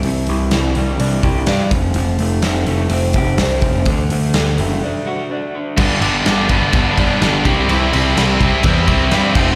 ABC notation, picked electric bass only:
X:1
M:4/4
L:1/8
Q:1/4=126
K:Gmix
V:1 name="Picked electric bass" clef=bass
C,, C,, C,, C,, C,, C,, G,, F,,, | F,,, F,,, F,,, F,,, F,,, F,,, C,, F,,, | D,, D,, D,, ^F,,, z4 | G,,, G,,, G,,, G,,, G,,, G,,, G,,, C,, |
C,, C,, C,, C,, E,, C,, G,, F,,, |]